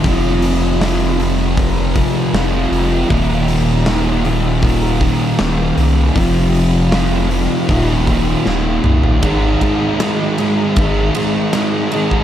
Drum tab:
RD |----------------|----------------|----------------|x-x-x-x-x-x-x-x-|
HH |o-o-o-o-o-o-o-o-|o-o-o-o-o-o-o-o-|o-o-o-o-o-o-----|----------------|
SD |----o-------o---|----o-------o---|----o-------o---|----o-------o---|
T2 |----------------|----------------|--------------o-|----------------|
FT |----------------|----------------|---------------o|----------------|
BD |o-------o-o-----|o-------o-o-----|o-------o-o-----|o-o-----o------o|